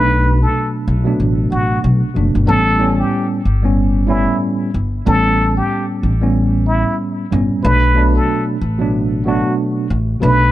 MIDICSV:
0, 0, Header, 1, 4, 480
1, 0, Start_track
1, 0, Key_signature, 2, "minor"
1, 0, Tempo, 645161
1, 1845, Time_signature, 4, 2, 24, 8
1, 7825, End_track
2, 0, Start_track
2, 0, Title_t, "Muted trumpet"
2, 0, Program_c, 0, 59
2, 0, Note_on_c, 0, 71, 102
2, 284, Note_off_c, 0, 71, 0
2, 315, Note_on_c, 0, 69, 78
2, 527, Note_off_c, 0, 69, 0
2, 1125, Note_on_c, 0, 66, 81
2, 1341, Note_off_c, 0, 66, 0
2, 1846, Note_on_c, 0, 69, 112
2, 2203, Note_off_c, 0, 69, 0
2, 2221, Note_on_c, 0, 67, 75
2, 2439, Note_off_c, 0, 67, 0
2, 3042, Note_on_c, 0, 64, 85
2, 3260, Note_off_c, 0, 64, 0
2, 3773, Note_on_c, 0, 69, 109
2, 4127, Note_off_c, 0, 69, 0
2, 4145, Note_on_c, 0, 67, 75
2, 4361, Note_off_c, 0, 67, 0
2, 4967, Note_on_c, 0, 64, 81
2, 5182, Note_off_c, 0, 64, 0
2, 5682, Note_on_c, 0, 71, 105
2, 6041, Note_off_c, 0, 71, 0
2, 6069, Note_on_c, 0, 69, 78
2, 6283, Note_off_c, 0, 69, 0
2, 6887, Note_on_c, 0, 66, 73
2, 7102, Note_off_c, 0, 66, 0
2, 7605, Note_on_c, 0, 71, 104
2, 7825, Note_off_c, 0, 71, 0
2, 7825, End_track
3, 0, Start_track
3, 0, Title_t, "Tine electric piano"
3, 0, Program_c, 1, 4
3, 0, Note_on_c, 1, 47, 98
3, 0, Note_on_c, 1, 54, 85
3, 0, Note_on_c, 1, 57, 88
3, 0, Note_on_c, 1, 62, 101
3, 701, Note_off_c, 1, 47, 0
3, 705, Note_off_c, 1, 54, 0
3, 709, Note_off_c, 1, 57, 0
3, 712, Note_off_c, 1, 62, 0
3, 774, Note_on_c, 1, 47, 100
3, 781, Note_on_c, 1, 54, 82
3, 789, Note_on_c, 1, 57, 80
3, 797, Note_on_c, 1, 62, 94
3, 1544, Note_off_c, 1, 47, 0
3, 1547, Note_off_c, 1, 54, 0
3, 1551, Note_off_c, 1, 57, 0
3, 1555, Note_off_c, 1, 62, 0
3, 1591, Note_on_c, 1, 47, 79
3, 1598, Note_on_c, 1, 54, 67
3, 1606, Note_on_c, 1, 57, 69
3, 1613, Note_on_c, 1, 62, 82
3, 1822, Note_off_c, 1, 47, 0
3, 1826, Note_off_c, 1, 54, 0
3, 1826, Note_on_c, 1, 45, 90
3, 1830, Note_off_c, 1, 57, 0
3, 1833, Note_off_c, 1, 62, 0
3, 1834, Note_on_c, 1, 55, 90
3, 1841, Note_on_c, 1, 59, 89
3, 1848, Note_on_c, 1, 61, 105
3, 2060, Note_off_c, 1, 45, 0
3, 2064, Note_off_c, 1, 55, 0
3, 2067, Note_off_c, 1, 59, 0
3, 2071, Note_off_c, 1, 61, 0
3, 2071, Note_on_c, 1, 45, 93
3, 2078, Note_on_c, 1, 55, 81
3, 2086, Note_on_c, 1, 59, 82
3, 2094, Note_on_c, 1, 61, 105
3, 2526, Note_off_c, 1, 45, 0
3, 2530, Note_off_c, 1, 55, 0
3, 2534, Note_off_c, 1, 59, 0
3, 2538, Note_off_c, 1, 61, 0
3, 2694, Note_on_c, 1, 45, 85
3, 2702, Note_on_c, 1, 55, 89
3, 2708, Note_on_c, 1, 59, 80
3, 2716, Note_on_c, 1, 61, 105
3, 3015, Note_off_c, 1, 45, 0
3, 3019, Note_off_c, 1, 55, 0
3, 3023, Note_off_c, 1, 59, 0
3, 3027, Note_off_c, 1, 61, 0
3, 3027, Note_on_c, 1, 45, 98
3, 3036, Note_on_c, 1, 55, 86
3, 3042, Note_on_c, 1, 59, 83
3, 3050, Note_on_c, 1, 61, 110
3, 3485, Note_off_c, 1, 45, 0
3, 3489, Note_off_c, 1, 55, 0
3, 3492, Note_off_c, 1, 59, 0
3, 3496, Note_off_c, 1, 61, 0
3, 3758, Note_on_c, 1, 45, 97
3, 3765, Note_on_c, 1, 55, 91
3, 3773, Note_on_c, 1, 59, 85
3, 3780, Note_on_c, 1, 61, 108
3, 4543, Note_off_c, 1, 45, 0
3, 4547, Note_off_c, 1, 55, 0
3, 4551, Note_off_c, 1, 59, 0
3, 4554, Note_off_c, 1, 61, 0
3, 4614, Note_on_c, 1, 45, 89
3, 4622, Note_on_c, 1, 55, 85
3, 4629, Note_on_c, 1, 59, 85
3, 4637, Note_on_c, 1, 61, 102
3, 5384, Note_off_c, 1, 45, 0
3, 5388, Note_off_c, 1, 55, 0
3, 5391, Note_off_c, 1, 59, 0
3, 5395, Note_off_c, 1, 61, 0
3, 5431, Note_on_c, 1, 45, 76
3, 5438, Note_on_c, 1, 55, 73
3, 5445, Note_on_c, 1, 59, 68
3, 5453, Note_on_c, 1, 61, 85
3, 5662, Note_off_c, 1, 45, 0
3, 5666, Note_off_c, 1, 55, 0
3, 5669, Note_off_c, 1, 59, 0
3, 5673, Note_off_c, 1, 61, 0
3, 5674, Note_on_c, 1, 47, 81
3, 5682, Note_on_c, 1, 54, 87
3, 5689, Note_on_c, 1, 57, 84
3, 5697, Note_on_c, 1, 62, 104
3, 5901, Note_off_c, 1, 47, 0
3, 5908, Note_off_c, 1, 54, 0
3, 5910, Note_on_c, 1, 47, 90
3, 5911, Note_off_c, 1, 57, 0
3, 5915, Note_off_c, 1, 62, 0
3, 5917, Note_on_c, 1, 54, 81
3, 5925, Note_on_c, 1, 57, 84
3, 5932, Note_on_c, 1, 62, 96
3, 6366, Note_off_c, 1, 47, 0
3, 6370, Note_off_c, 1, 54, 0
3, 6374, Note_off_c, 1, 57, 0
3, 6377, Note_off_c, 1, 62, 0
3, 6536, Note_on_c, 1, 47, 100
3, 6543, Note_on_c, 1, 54, 86
3, 6551, Note_on_c, 1, 57, 78
3, 6558, Note_on_c, 1, 62, 106
3, 6857, Note_off_c, 1, 47, 0
3, 6860, Note_off_c, 1, 54, 0
3, 6864, Note_off_c, 1, 57, 0
3, 6867, Note_off_c, 1, 62, 0
3, 6883, Note_on_c, 1, 47, 93
3, 6890, Note_on_c, 1, 54, 83
3, 6897, Note_on_c, 1, 57, 84
3, 6905, Note_on_c, 1, 62, 113
3, 7332, Note_off_c, 1, 47, 0
3, 7336, Note_off_c, 1, 54, 0
3, 7339, Note_off_c, 1, 57, 0
3, 7343, Note_off_c, 1, 62, 0
3, 7590, Note_on_c, 1, 47, 98
3, 7598, Note_on_c, 1, 54, 88
3, 7605, Note_on_c, 1, 57, 90
3, 7612, Note_on_c, 1, 62, 100
3, 7825, Note_off_c, 1, 47, 0
3, 7825, Note_off_c, 1, 54, 0
3, 7825, Note_off_c, 1, 57, 0
3, 7825, Note_off_c, 1, 62, 0
3, 7825, End_track
4, 0, Start_track
4, 0, Title_t, "Upright bass"
4, 0, Program_c, 2, 32
4, 0, Note_on_c, 2, 35, 110
4, 323, Note_off_c, 2, 35, 0
4, 651, Note_on_c, 2, 35, 97
4, 846, Note_off_c, 2, 35, 0
4, 890, Note_on_c, 2, 33, 86
4, 1086, Note_off_c, 2, 33, 0
4, 1130, Note_on_c, 2, 33, 93
4, 1326, Note_off_c, 2, 33, 0
4, 1369, Note_on_c, 2, 35, 100
4, 1483, Note_off_c, 2, 35, 0
4, 1608, Note_on_c, 2, 30, 88
4, 1723, Note_off_c, 2, 30, 0
4, 1749, Note_on_c, 2, 31, 89
4, 1829, Note_off_c, 2, 31, 0
4, 1849, Note_on_c, 2, 33, 109
4, 2243, Note_off_c, 2, 33, 0
4, 2569, Note_on_c, 2, 31, 85
4, 3158, Note_off_c, 2, 31, 0
4, 3529, Note_on_c, 2, 31, 90
4, 3725, Note_off_c, 2, 31, 0
4, 3770, Note_on_c, 2, 33, 108
4, 4163, Note_off_c, 2, 33, 0
4, 4488, Note_on_c, 2, 33, 92
4, 5077, Note_off_c, 2, 33, 0
4, 5448, Note_on_c, 2, 31, 99
4, 5563, Note_off_c, 2, 31, 0
4, 5688, Note_on_c, 2, 35, 112
4, 6082, Note_off_c, 2, 35, 0
4, 6409, Note_on_c, 2, 33, 89
4, 6998, Note_off_c, 2, 33, 0
4, 7368, Note_on_c, 2, 33, 95
4, 7564, Note_off_c, 2, 33, 0
4, 7609, Note_on_c, 2, 35, 105
4, 7825, Note_off_c, 2, 35, 0
4, 7825, End_track
0, 0, End_of_file